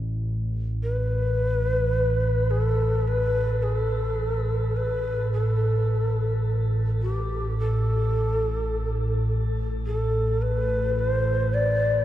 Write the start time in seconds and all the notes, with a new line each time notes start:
Already playing: A1 A2
0.79 A1 A2 B4
2.50 G#4
2.61 A4
3.07 B4
3.62 G#4
3.78 A4
4.76 B4
5.33 A4
7.02 G4
7.59 A4
9.86 A4
10.42 B4
10.99 C5
11.54 D5